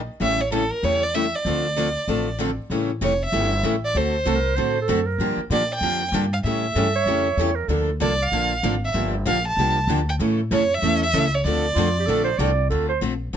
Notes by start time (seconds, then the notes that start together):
0.20 A1 C#3 E3 G3 A3 C#4 E4 G4 A4 E5
0.41 C#5
0.52 C#3 E3 G3 A3 C#4 E4 G4 A4
0.71 A#4
0.83 E2 C#3 E3 G3 A3 C#4 E4 G4 A4 C#5
1.03 D5
1.14 C#3 E3 G3 A3 C#4 E4 G4 A4 E5
1.35 D5
1.45 D2 D3 F3 A3 C4 D4 F4 A4
1.76 D3 F3 A3 C4 D4 F4 A4
2.08 A1 D3 F3 A3 C4 D4 F4 A4
2.39 D3 F3 A3 C4 D4 F4 A4
2.70 A1 C#3 E3 G3 A3 C#4 E4 G4 A4
3.01 F1 C#3 E3 G3 A3 C#4 E4 G4 A4 C#5
3.25 E5
3.32 G1 C#3 E3 G3 A3 C#4 E4 G4 A4
3.63 A1 C#3 E3 G3 A3 C#4 E4 G4 A4
3.85 D5
3.95 D2 D3 A3 C4 F#4 A4 C5
4.26 C2 D3 A3 C4 F#4 A4
4.35 A#4
4.56 A2 D3 A3 C4 F#4 A4 C5
4.81 A4
4.88 F#2 D3 A3 C4 F#4 A4
5.06 A#4
5.18 G2 D3 F3 A#3 D4 G4
5.37 muted upright bass stroke
5.50 A#2 D3 F3 A#3 D4 G4 D5
5.74 G5
5.81 F2 D3 F3 A#3 D4 G4
6.12 G2 D3 F3 A#3 D4 G4
6.33 F5
6.44 A2 C#3 E3 G3 A3 C#4 E4 G4 A4 E5
6.74 G2 C#3 E3 G3 A3 C#4 E4 G4 A4
6.96 C#5
7.06 F2 C#3 E3 G3 A3 C#4 E4 G4 A4
7.37 E2 C#3 E3 G3 A3 C#4 E4 G4 A4
7.55 A#4
7.68 D2 D3 F3 A#3 D4 A4
8.00 C2 D3 F3 A#3 D4 A4 D5
8.23 F5
8.32 A#1 D3 F3 A#3 D4 A4
8.63 G#1 D3 F3 A#3 D4 A4
8.85 E5
8.94 G1 D3 F3 A#3 D4 G4
9.26 A#1 D3 F3 A#3 D4 G4 F5
9.47 A5
9.57 C2 D3 F3 A#3 D4 G4
9.87 D2 D3 F3 A#3 D4 G4
10.09 G5
10.19 A2 C#3 E3 A3 C#4 E4 A4
10.51 F2 C#3 E3 A3 C#4 E4 A4 C#5
10.75 E5
10.82 E2 C#3 E3 A3 C#4 E4 A4
11.03 E5
11.13 C#2 C#3 E3 A3 C#4 E4 A4
11.35 C#5
11.44 D2 D3 F3 A3 C4 D4 F4 A4 D5
11.75 F2 D3 F3 A3 C4 D4 F4
11.79 A4
11.99 G4
12.06 A#1 D3 F3 A3 C4 D4 F4 A4
12.24 C5
12.38 C2 D3 F3 A3 C4 D4 F4 A4 D5
12.70 D2 D3 A3 C4 F4 A4
12.89 C5
13.01 A#1 D3 A3 C4 F4 A4
13.33 A1 D3